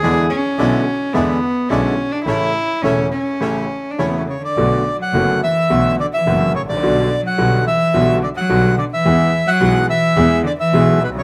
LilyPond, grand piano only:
\new Staff \with { instrumentName = "Grand piano" } { \clef bass \time 4/4 \key a \mixolydian \tempo 4 = 107 <e, d e gis b e'>8 r8 <b,, b, d gis b e'>8 r8 <e, d e gis b e'>8 r8 <b,, b, d gis b e'>8 r8 | <a,, a, cis e a e'>8 r8 <e,, e, cis e a e'>8 r8 <a,, a, cis e a e'>8 r8 <e,, e, cis e a e'>8 r8 | \key b \minor <b,, b, d a b fis'>8 r8 <fis,, fis, d a b fis'>8 r8 <b,, b, d a b fis'>8 r8 <fis,, fis, d a b fis'>8 r32 gis,,32 a,,32 ais,,32 | <b,, b, d g b fis'>8 r8 <b,, b, d g b fis'>8 r8 <b,, b, d g b fis'>8 r8 <b,, b, d g b fis'>8 r8 |
<e, e gis b gis'>8 r8 <b,, b, e gis b gis'>8 r8 <e, e gis b gis'>8 r8 <b,, b, e gis b gis'>8 r32 b,,32 c,32 r32 | }